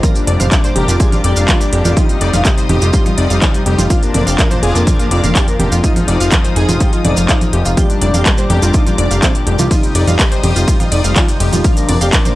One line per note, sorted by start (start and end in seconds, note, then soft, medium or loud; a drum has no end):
0.00 9.70 F2 medium
0.00 0.73 A#2 medium
0.00 9.70 F3 medium
0.00 0.73 G3 medium
0.00 0.73 D4 loud
0.00 0.15 F4 medium
0.00 3.86 G4 medium
0.00 0.12 A#4 loud
0.00 1.95 D5 medium
0.00 1.95 A#5 medium
0.00 0.12 A#5 loud
0.00 1.95 D6 medium
0.00 kick loud
0.00 closed hi-hat medium
0.00 low conga loud
0.00 maracas medium
0.15 0.24 D4 medium
0.15 0.24 D5 medium
0.15 closed hi-hat soft
0.15 maracas soft
0.27 0.37 F1 loud
0.27 0.36 D4 medium
0.27 0.36 D5 loud
0.27 0.36 D5 medium
0.27 closed hi-hat loud
0.40 0.49 F1 medium
0.40 0.48 C5 loud
0.40 0.51 F5 medium
0.40 0.48 C6 loud
0.40 closed hi-hat soft
0.40 low conga medium
0.40 maracas medium
0.52 0.60 D4 medium
0.52 0.60 D5 medium
0.52 kick loud
0.52 clap loud
0.52 closed hi-hat medium
0.52 maracas medium
0.64 0.72 D4 medium
0.64 0.75 C5 medium
0.64 0.72 D5 medium
0.64 closed hi-hat soft
0.64 maracas soft
0.76 0.86 F1 medium
0.76 0.97 A#2 medium
0.76 0.97 G3 medium
0.76 0.97 D4 loud
0.76 0.88 G4 loud
0.76 0.84 A#4 medium
0.76 0.84 A#5 medium
0.76 closed hi-hat medium
0.76 low conga loud
0.88 0.98 F1 medium
0.88 0.96 D4 medium
0.88 0.93 F4 medium
0.88 0.96 D5 medium
0.88 closed hi-hat soft
0.88 maracas medium
1.00 1.34 A#2 medium
1.00 1.34 G3 medium
1.00 1.34 D4 medium
1.00 1.11 F4 medium
1.00 1.09 G#4 medium
1.00 1.09 G#5 medium
1.00 kick loud
1.00 closed hi-hat medium
1.00 maracas medium
1.12 1.21 D4 medium
1.12 1.24 F4 medium
1.12 1.20 D5 medium
1.12 closed hi-hat soft
1.12 low conga medium
1.12 maracas soft
1.24 1.34 F1 loud
1.24 1.33 G4 medium
1.24 1.33 D5 loud
1.24 1.33 G5 medium
1.24 closed hi-hat loud
1.36 1.46 F1 medium
1.36 1.70 A#2 loud
1.36 1.70 G3 medium
1.36 1.70 D4 loud
1.36 1.45 D4 medium
1.36 1.45 D5 medium
1.36 1.48 F5 medium
1.36 closed hi-hat soft
1.36 maracas medium
1.48 1.57 F4 medium
1.48 1.54 D5 medium
1.48 1.57 F5 medium
1.48 kick loud
1.48 clap loud
1.48 closed hi-hat medium
1.48 low conga medium
1.48 maracas medium
1.61 1.69 D4 medium
1.61 1.69 D5 medium
1.61 closed hi-hat soft
1.61 maracas soft
1.72 1.83 F1 medium
1.72 1.94 A#2 medium
1.72 1.94 G3 medium
1.72 1.94 D4 medium
1.72 1.81 D4 medium
1.72 1.84 G4 medium
1.72 1.81 D5 medium
1.72 closed hi-hat loud
1.85 1.94 F1 medium
1.85 1.93 D4 medium
1.85 1.90 F4 medium
1.85 1.93 D5 medium
1.85 closed hi-hat soft
1.85 low conga medium
1.85 maracas medium
1.97 2.66 C3 medium
1.97 2.66 G3 medium
1.97 2.66 D#4 loud
1.97 2.05 D#4 loud
1.97 2.09 F4 medium
1.97 3.88 D#5 medium
1.97 2.05 D#5 loud
1.97 3.88 C6 medium
1.97 3.88 D#6 medium
1.97 kick loud
1.97 closed hi-hat medium
1.97 low conga loud
1.97 maracas medium
2.09 2.17 G3 medium
2.09 2.17 G4 medium
2.09 closed hi-hat soft
2.09 maracas soft
2.21 2.31 F1 loud
2.21 2.30 G3 medium
2.21 2.29 G4 medium
2.21 2.30 D5 loud
2.21 closed hi-hat loud
2.33 2.43 F1 medium
2.33 2.42 F4 loud
2.33 2.41 F5 loud
2.33 2.45 F5 medium
2.33 closed hi-hat soft
2.33 low conga medium
2.33 maracas medium
2.45 2.54 G3 medium
2.45 2.54 G4 medium
2.45 kick loud
2.45 clap loud
2.45 closed hi-hat medium
2.45 maracas medium
2.58 2.66 G3 medium
2.58 2.66 G4 medium
2.58 2.69 C5 medium
2.58 closed hi-hat soft
2.58 maracas soft
2.69 2.79 F1 medium
2.69 3.15 C3 medium
2.69 3.15 G3 medium
2.69 3.15 D#4 medium
2.69 2.78 D#4 medium
2.69 2.81 G4 loud
2.69 2.78 D#5 medium
2.69 closed hi-hat medium
2.69 low conga loud
2.82 2.91 F1 medium
2.82 2.90 G3 medium
2.82 2.87 F4 medium
2.82 2.90 G4 medium
2.82 closed hi-hat soft
2.82 maracas medium
2.93 3.05 F4 medium
2.93 3.02 G4 medium
2.93 3.02 G5 medium
2.93 kick loud
2.93 closed hi-hat medium
2.93 maracas medium
3.06 3.14 G3 medium
3.06 3.17 F4 medium
3.06 3.14 G4 medium
3.06 closed hi-hat soft
3.06 low conga medium
3.06 maracas soft
3.18 3.28 F1 loud
3.18 3.87 C3 medium
3.18 3.87 G3 medium
3.18 3.87 D#4 medium
3.18 3.26 D#4 medium
3.18 3.27 D5 loud
3.18 3.26 D#5 medium
3.18 closed hi-hat loud
3.30 3.40 F1 medium
3.30 3.38 G3 medium
3.30 3.38 G4 medium
3.30 3.41 F5 medium
3.30 closed hi-hat soft
3.30 maracas medium
3.41 3.50 F4 medium
3.41 3.47 D5 medium
3.41 3.50 F5 loud
3.41 kick loud
3.41 clap loud
3.41 closed hi-hat medium
3.41 low conga loud
3.41 maracas medium
3.54 3.62 G3 medium
3.54 3.62 G4 medium
3.54 closed hi-hat soft
3.54 maracas soft
3.66 3.76 F1 medium
3.66 3.75 G3 medium
3.66 3.78 G4 medium
3.66 3.75 G4 medium
3.66 closed hi-hat medium
3.78 3.88 F1 medium
3.78 3.86 G3 medium
3.78 3.84 F4 medium
3.78 3.87 G4 medium
3.78 closed hi-hat soft
3.78 low conga medium
3.78 maracas medium
3.90 4.60 A#2 medium
3.90 4.60 F3 medium
3.90 4.60 D4 loud
3.90 3.99 F4 loud
3.90 4.02 F4 medium
3.90 7.73 F4 medium
3.90 5.82 D5 medium
3.90 3.99 F5 loud
3.90 5.82 A#5 medium
3.90 5.82 D6 medium
3.90 kick loud
3.90 closed hi-hat medium
3.90 maracas medium
4.02 4.11 A#3 medium
4.02 4.11 A#4 medium
4.02 closed hi-hat soft
4.02 maracas soft
4.14 4.24 F1 loud
4.14 4.23 A#3 medium
4.14 4.23 A#4 medium
4.14 4.23 D5 loud
4.14 closed hi-hat loud
4.14 low conga loud
4.27 4.36 F1 medium
4.27 4.35 G4 loud
4.27 4.38 F5 medium
4.27 4.35 G5 loud
4.27 closed hi-hat soft
4.27 maracas medium
4.38 4.47 A#3 medium
4.38 4.47 A#4 medium
4.38 kick loud
4.38 clap loud
4.38 closed hi-hat medium
4.38 maracas medium
4.51 4.59 A#3 medium
4.51 4.59 A#4 medium
4.51 4.62 C5 medium
4.51 closed hi-hat soft
4.51 low conga loud
4.51 maracas soft
4.63 4.73 F1 loud
4.63 4.84 A#2 medium
4.63 4.84 F3 medium
4.63 4.84 D4 medium
4.63 4.71 F4 medium
4.63 4.75 G#4 loud
4.63 4.71 F5 medium
4.63 closed hi-hat medium
4.75 4.85 F1 medium
4.75 4.83 A#3 medium
4.75 4.80 F4 medium
4.75 4.83 A#4 medium
4.75 closed hi-hat soft
4.75 maracas medium
4.87 5.81 A#2 medium
4.87 5.81 F3 medium
4.87 5.81 D4 medium
4.87 4.98 F4 medium
4.87 4.96 G#4 medium
4.87 4.95 G#5 medium
4.87 kick loud
4.87 closed hi-hat medium
4.87 low conga medium
4.87 maracas medium
4.99 5.08 A#3 medium
4.99 5.11 F4 medium
4.99 5.07 A#4 medium
4.99 closed hi-hat soft
4.99 maracas soft
5.11 5.21 F1 loud
5.11 5.20 F4 medium
5.11 5.20 D5 loud
5.11 5.20 F5 medium
5.11 closed hi-hat loud
5.24 5.33 F1 medium
5.24 5.32 A#3 medium
5.24 5.32 A#4 medium
5.24 5.35 F5 medium
5.24 closed hi-hat soft
5.24 low conga loud
5.24 maracas medium
5.35 5.44 G4 medium
5.35 5.41 D5 medium
5.35 5.44 G5 medium
5.35 kick loud
5.35 clap loud
5.35 closed hi-hat medium
5.35 maracas medium
5.48 5.56 A#3 medium
5.48 5.56 A#4 medium
5.48 closed hi-hat soft
5.48 maracas soft
5.59 5.69 F1 medium
5.59 5.68 A#3 medium
5.59 5.71 G4 medium
5.59 5.68 A#4 medium
5.59 closed hi-hat medium
5.59 low conga loud
5.72 5.81 F1 medium
5.72 5.80 A#3 medium
5.72 5.77 F4 medium
5.72 5.80 A#4 medium
5.72 closed hi-hat soft
5.72 maracas medium
5.83 6.54 G#2 medium
5.83 6.54 F3 medium
5.83 6.54 D#4 loud
5.83 5.92 D#4 loud
5.83 5.96 F4 medium
5.83 7.75 C5 medium
5.83 5.92 D#5 loud
5.83 7.75 G#5 medium
5.83 7.75 D#6 medium
5.83 kick loud
5.83 closed hi-hat medium
5.83 maracas medium
5.96 6.04 F3 medium
5.96 6.04 F4 medium
5.96 closed hi-hat soft
5.96 low conga loud
5.96 maracas soft
6.08 6.18 F1 loud
6.08 6.16 F3 medium
6.08 6.17 F4 medium
6.08 6.17 D5 loud
6.08 closed hi-hat loud
6.20 6.30 F1 medium
6.20 6.28 F4 loud
6.20 6.32 F5 medium
6.20 6.29 F5 loud
6.20 closed hi-hat soft
6.20 maracas medium
6.31 6.41 F3 medium
6.31 6.41 F4 medium
6.31 kick loud
6.31 clap loud
6.31 closed hi-hat medium
6.31 low conga medium
6.31 maracas medium
6.45 6.53 F3 medium
6.45 6.53 F4 medium
6.45 6.56 C5 medium
6.45 closed hi-hat soft
6.45 maracas soft
6.56 6.66 F1 medium
6.56 7.02 G#2 medium
6.56 7.02 F3 medium
6.56 7.02 D#4 medium
6.56 6.65 D#4 medium
6.56 6.68 G#4 loud
6.56 6.65 D#5 loud
6.56 closed hi-hat medium
6.69 6.78 F1 medium
6.69 6.77 F3 medium
6.69 6.74 F4 medium
6.69 6.77 F4 medium
6.69 closed hi-hat soft
6.69 low conga medium
6.69 maracas medium
6.80 6.92 F4 medium
6.80 6.89 G4 medium
6.80 6.89 G5 medium
6.80 kick loud
6.80 closed hi-hat medium
6.80 maracas medium
6.93 7.01 F3 medium
6.93 7.04 F4 medium
6.93 7.01 F4 medium
6.93 closed hi-hat soft
6.93 maracas soft
7.05 7.15 F1 loud
7.05 7.75 G#2 medium
7.05 7.75 F3 medium
7.05 7.75 D#4 medium
7.05 7.13 D#4 medium
7.05 7.14 D5 loud
7.05 7.13 D#5 medium
7.05 closed hi-hat loud
7.05 low conga loud
7.17 7.27 F1 medium
7.17 7.25 F3 medium
7.17 7.25 F4 medium
7.17 7.28 F5 medium
7.17 closed hi-hat soft
7.17 maracas medium
7.29 7.37 F4 medium
7.29 7.34 D5 medium
7.29 7.37 F5 medium
7.29 kick loud
7.29 clap loud
7.29 closed hi-hat medium
7.29 maracas medium
7.41 7.49 F3 medium
7.41 7.49 F4 medium
7.41 closed hi-hat soft
7.41 low conga medium
7.41 maracas soft
7.53 7.63 F1 loud
7.53 7.62 F3 medium
7.53 7.61 F4 medium
7.53 7.65 G4 medium
7.53 closed hi-hat medium
7.65 7.75 F1 medium
7.65 7.73 F3 medium
7.65 7.71 F4 medium
7.65 7.74 F4 medium
7.65 closed hi-hat soft
7.65 maracas medium
7.77 8.47 A#2 loud
7.77 8.47 G3 medium
7.77 8.47 D4 loud
7.77 7.89 F4 medium
7.77 11.60 G4 medium
7.77 7.86 G4 loud
7.77 9.69 D5 medium
7.77 7.86 G5 loud
7.77 9.69 A#5 medium
7.77 9.69 D6 loud
7.77 kick loud
7.77 closed hi-hat medium
7.77 low conga medium
7.77 maracas medium
7.90 7.98 G3 medium
7.90 7.98 G4 medium
7.90 closed hi-hat soft
7.90 maracas soft
8.01 8.12 F1 loud
8.01 8.10 G3 medium
8.01 8.10 G4 medium
8.01 8.11 D5 loud
8.01 closed hi-hat loud
8.14 8.23 F1 medium
8.14 8.22 G4 medium
8.14 8.25 F5 medium
8.14 8.22 G5 loud
8.14 closed hi-hat soft
8.14 low conga medium
8.14 maracas medium
8.26 8.34 G3 medium
8.26 8.34 G4 medium
8.26 kick loud
8.26 clap loud
8.26 closed hi-hat medium
8.26 maracas medium
8.37 8.46 G3 medium
8.37 8.46 G4 medium
8.37 8.49 C5 medium
8.37 closed hi-hat soft
8.37 maracas soft
8.50 8.60 F1 medium
8.50 8.71 A#2 medium
8.50 8.71 G3 medium
8.50 8.71 D4 loud
8.50 8.58 G4 medium
8.50 8.62 G4 loud
8.50 8.58 G5 medium
8.50 closed hi-hat medium
8.50 low conga medium
8.62 8.72 F1 medium
8.62 8.70 G3 medium
8.62 8.68 F4 medium
8.62 8.70 G4 medium
8.62 closed hi-hat soft
8.62 maracas medium
8.74 9.68 A#2 medium
8.74 9.68 G3 medium
8.74 9.68 D4 medium
8.74 8.83 D#4 medium
8.74 8.86 F4 medium
8.74 8.83 D#5 medium
8.74 kick loud
8.74 closed hi-hat medium
8.74 maracas medium
8.86 8.95 G3 medium
8.86 8.98 F4 medium
8.86 8.95 G4 medium
8.86 closed hi-hat soft
8.86 low conga medium
8.86 maracas soft
8.98 9.08 F1 loud
8.98 9.07 D4 medium
8.98 9.07 D5 loud
8.98 9.07 D5 medium
8.98 closed hi-hat loud
9.11 9.20 F1 medium
9.11 9.19 G3 medium
9.11 9.19 G4 medium
9.11 9.22 F5 medium
9.11 closed hi-hat soft
9.11 maracas medium
9.22 9.31 C4 medium
9.22 9.31 C5 medium
9.22 9.28 D5 medium
9.22 kick loud
9.22 clap loud
9.22 closed hi-hat medium
9.22 low conga medium
9.22 maracas medium
9.35 9.43 G3 medium
9.35 9.43 G4 medium
9.35 closed hi-hat soft
9.35 maracas soft
9.47 9.57 F1 medium
9.47 9.55 G3 medium
9.47 9.59 G4 medium
9.47 9.55 G4 medium
9.47 closed hi-hat medium
9.59 9.68 C2 medium
9.59 9.67 G3 medium
9.59 9.64 F4 medium
9.59 9.67 G4 medium
9.59 closed hi-hat soft
9.59 low conga medium
9.59 maracas medium
9.71 12.35 F2 medium
9.71 10.41 C3 medium
9.71 12.35 F3 medium
9.71 10.41 G3 medium
9.71 10.41 D#4 loud
9.71 9.79 D#4 loud
9.71 9.83 F4 medium
9.71 9.79 D#5 loud
9.71 11.63 D#5 medium
9.71 11.63 C6 medium
9.71 11.63 D#6 medium
9.71 kick loud
9.71 closed hi-hat medium
9.71 ride medium
9.71 low conga medium
9.71 maracas medium
9.83 9.91 G3 medium
9.83 9.91 G4 medium
9.83 closed hi-hat soft
9.83 maracas soft
9.95 10.05 F1 loud
9.95 10.04 G3 medium
9.95 10.04 G4 medium
9.95 10.04 D5 loud
9.95 closed hi-hat loud
9.95 ride medium
10.07 10.17 F1 medium
10.07 10.15 F4 loud
10.07 10.16 F5 loud
10.07 10.19 F5 medium
10.07 closed hi-hat soft
10.07 low conga medium
10.07 maracas medium
10.19 10.28 G3 medium
10.19 10.28 G4 medium
10.19 kick loud
10.19 clap loud
10.19 closed hi-hat medium
10.19 ride medium
10.19 maracas medium
10.32 10.40 G3 medium
10.32 10.40 G4 medium
10.32 10.43 C5 medium
10.32 closed hi-hat soft
10.32 maracas soft
10.43 10.53 F1 medium
10.43 10.89 C3 medium
10.43 10.89 G3 medium
10.43 10.89 D#4 medium
10.43 10.52 D#4 medium
10.43 10.55 G4 loud
10.43 10.52 D#5 medium
10.43 closed hi-hat medium
10.43 ride medium
10.43 low conga medium
10.56 10.65 F1 medium
10.56 10.64 G3 medium
10.56 10.61 F4 medium
10.56 10.64 G4 medium
10.56 closed hi-hat soft
10.56 maracas medium
10.68 10.79 F4 medium
10.68 10.76 G4 medium
10.68 10.76 G5 medium
10.68 kick loud
10.68 closed hi-hat medium
10.68 ride medium
10.68 maracas medium
10.80 10.88 G3 medium
10.80 10.91 F4 medium
10.80 10.88 G4 medium
10.80 closed hi-hat soft
10.80 low conga medium
10.80 maracas soft
10.92 11.02 F1 medium
10.92 11.62 C3 medium
10.92 11.62 G3 medium
10.92 11.00 D#4 medium
10.92 11.62 D#4 medium
10.92 11.01 D5 loud
10.92 11.00 D#5 medium
10.92 closed hi-hat loud
10.92 ride medium
11.04 11.14 F1 medium
11.04 11.12 G3 medium
11.04 11.12 G4 medium
11.04 11.15 F5 medium
11.04 closed hi-hat soft
11.04 maracas medium
11.16 11.25 F4 medium
11.16 11.21 D5 medium
11.16 11.24 F5 medium
11.16 kick loud
11.16 clap loud
11.16 closed hi-hat medium
11.16 ride medium
11.16 low conga medium
11.16 maracas medium
11.28 11.37 G3 medium
11.28 11.36 G4 medium
11.28 closed hi-hat soft
11.28 maracas soft
11.40 11.50 F1 medium
11.40 11.49 G3 medium
11.40 11.52 G4 medium
11.40 11.49 G4 medium
11.40 closed hi-hat loud
11.40 ride medium
11.53 11.62 F1 medium
11.53 11.61 G3 medium
11.53 11.58 F4 medium
11.53 11.61 G4 medium
11.53 closed hi-hat soft
11.53 low conga medium
11.53 maracas medium
11.64 12.34 A#2 medium
11.64 12.34 F3 medium
11.64 12.34 D4 loud
11.64 11.76 F4 medium
11.64 12.35 F4 medium
11.64 11.73 F4 loud
11.64 12.35 D5 medium
11.64 11.73 F5 loud
11.64 12.35 A#5 medium
11.64 12.35 D6 medium
11.64 kick loud
11.64 closed hi-hat medium
11.64 ride soft
11.64 maracas medium
11.77 11.85 A#3 medium
11.77 11.85 A#4 medium
11.77 closed hi-hat soft
11.77 maracas soft
11.89 11.99 F1 loud
11.89 11.97 A#3 medium
11.89 11.97 A#4 medium
11.89 11.98 D5 loud
11.89 closed hi-hat loud
11.89 ride medium
11.89 low conga loud
12.01 12.11 F1 medium
12.01 12.09 G4 medium
12.01 12.12 F5 medium
12.01 12.09 G5 medium
12.01 closed hi-hat soft
12.01 maracas medium
12.13 12.22 A#3 medium
12.13 12.21 A#4 medium
12.13 kick loud
12.13 clap loud
12.13 closed hi-hat medium
12.13 ride medium
12.13 maracas medium
12.25 12.33 A#3 medium
12.25 12.33 A#4 medium
12.25 12.35 C5 medium
12.25 closed hi-hat soft
12.25 low conga medium
12.25 maracas soft